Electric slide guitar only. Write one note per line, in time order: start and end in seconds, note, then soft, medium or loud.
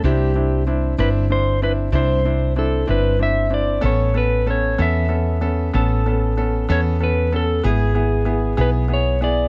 0.05 0.63 G4 medium
1.00 1.08 B4 loud
1.32 1.63 C5 medium
1.63 1.72 B4 loud
1.95 2.53 C5 medium
2.59 2.87 A4 medium
2.90 3.18 B4 medium
3.23 3.54 E5 loud
3.54 3.85 D5 loud
3.86 4.17 C#5 loud
4.17 4.49 B4 medium
4.50 4.81 C#5 medium
4.82 5.78 E5 loud
5.75 6.66 A4 medium
6.72 6.80 C#5 loud
7.04 7.35 B4 medium
7.36 7.66 A4 medium
7.66 8.62 G#4 medium
8.61 8.69 B4 loud
8.93 9.23 C#5 medium
9.24 9.48 D5 loud